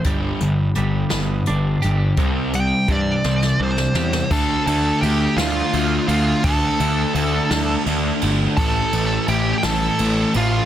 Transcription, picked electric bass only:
X:1
M:6/8
L:1/8
Q:3/8=56
K:Ddor
V:1 name="Picked electric bass" clef=bass
G,,, G,,, G,,, G,,, G,,, G,,, | C,,2 G,, C,, C,, E,, | D,, D,, D,, D,, D,, D,, | D,, D,, D,, D,, D,, G,,, |
A,,, A,,, A,,, A,,, A,,, A,,, |]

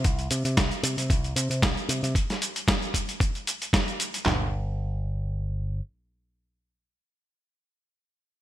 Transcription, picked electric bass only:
X:1
M:4/4
L:1/16
Q:"Swing 16ths" 1/4=114
K:Flyd
V:1 name="Picked electric bass" clef=bass
C,,2 C, C, C,, z C, C, C,,2 C, C, C,, z C, C, | z16 | G,,,12 z4 | z16 |]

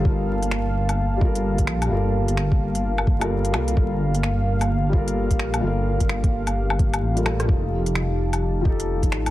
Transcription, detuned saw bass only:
X:1
M:4/4
L:1/16
Q:"Swing 16ths" 1/4=129
K:Fmix
V:1 name="Detuned saw bass" clef=bass
G,,,12- G,,,2 B,,,2 | G,,,3 G,,,8- G,,,3 C,,2 | G,,,12- G,,,2 B,,,2 | G,,,3 G,,,8- G,,, A,,,4 |
F,,,12- F,,,2 A,,,2 |]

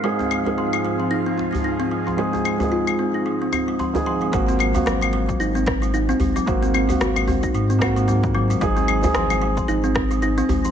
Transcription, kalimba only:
X:1
M:4/4
L:1/16
Q:"Swing 16ths" 1/4=112
K:Abmix
V:1 name="Kalimba" clef=bass
A, C A, A, F, A, A, F, E C C A, E C A, F, | A, C C A, F A, C E A, C C A, F, E, F, A, | A, C A, A, G, A, A, G, E C C A, E C A, G, | A, C C A, G A, C E A, C C A, G, E, G, A, |
A, C A, A, F, A, A, F, E C C A, E C A, F, |]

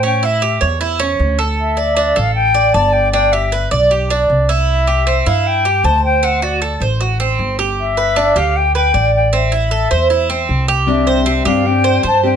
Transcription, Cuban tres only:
X:1
M:4/4
L:1/8
Q:1/4=155
K:C
V:1 name="Cuban tres"
^C E G ^c E C2 A- | A d D A2 d d2 | D G B d G D2 E- | E G C E2 G c2 |
C ^F A c F C2 G- | G B D G2 B d2 | C E A c E C2 G- | G c C G2 c c2 |]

